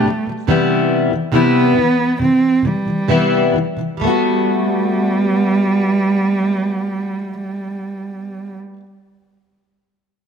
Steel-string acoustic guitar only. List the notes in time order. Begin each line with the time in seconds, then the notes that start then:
0.06 B2 G3
0.27 B2 G3
0.47 C3 E3 G3 B3 E4
1.11 C3 E3
1.32 C3 E3 G3 B3 E4
1.76 C3 E3
2.19 C3 E3
2.63 C3 E3
2.86 C3 E3
3.08 C3 E3 G3 B3 E4
3.54 C3 E3
3.77 C3 E3
3.97 G3
4.01 A3 B3
4.07 F#4